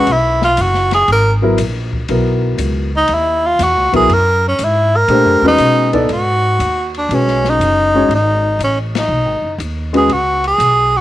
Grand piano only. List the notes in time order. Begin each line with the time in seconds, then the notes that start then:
1.42 F#3 B3 E4 A#4
2.09 F#3 B3 E4 A#4
3.92 F#3 B3 E4 A#4
5.09 A3 D4 G4 C5
5.43 G#3 C#4 F#4 B4
5.93 B3 D#4 A4 D5
7.11 G#3 C#4 F#4 B4
7.94 G#3 C#4 F#4 C#5
9.93 G#3 C#4 F#4 B4